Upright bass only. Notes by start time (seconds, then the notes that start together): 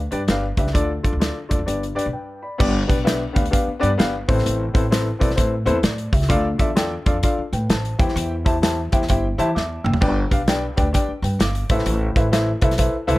0.12 G2
0.27 G1
0.57 C#2
0.74 D2
1.13 D2
1.52 E2
1.59 F2
1.68 G1
1.97 muted upright bass stroke
2.06 B1
2.60 G1
2.90 B1
3.36 D2
3.67 muted upright bass stroke
3.83 G2
4.00 G1
4.29 A1
4.46 A1
4.75 A1
5.22 B1
5.38 A2
5.66 E2
5.83 A2
6.13 C#2
6.30 D2
6.60 E2
7.06 F2
7.38 muted upright bass stroke
7.53 A2
7.69 A1
8.00 E2
8.16 E2
8.93 E2
9.10 G1
9.38 E3
9.56 E2
9.84 F#1
10.01 G1
10.32 B1
10.79 D2
11.08 muted upright bass stroke
11.22 G2
11.39 G1
11.70 A1
11.86 A1
12.16 A1
12.62 B1
13.08 C2
13.16 E2